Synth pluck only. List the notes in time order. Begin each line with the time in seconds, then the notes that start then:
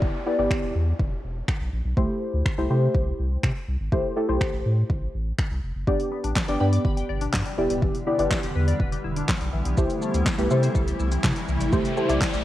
5.87 D3
6.12 B3
6.24 D4
6.36 D5
6.48 G5
6.60 B5
6.73 D6
6.85 B5
6.97 G5
7.09 D5
7.21 D4
7.34 B3
7.46 G3
7.58 E3
7.70 G3
7.83 E3
8.07 B3
8.19 D4
8.31 E4
8.43 G4
8.56 B4
8.68 D5
8.80 B4
8.92 G4
9.04 E4
9.16 D4
9.29 B3
9.41 G3
9.53 E3
9.65 G3
9.78 E3
10.02 A3
10.14 C4
10.26 E4
10.38 G4
10.51 A4
10.63 C5
10.75 A4
10.87 G4
11.00 E4
11.12 C4
11.24 A3
11.36 G3
11.48 E3
11.61 G3
11.73 E3
11.97 A3
12.09 C4
12.22 E4
12.34 G4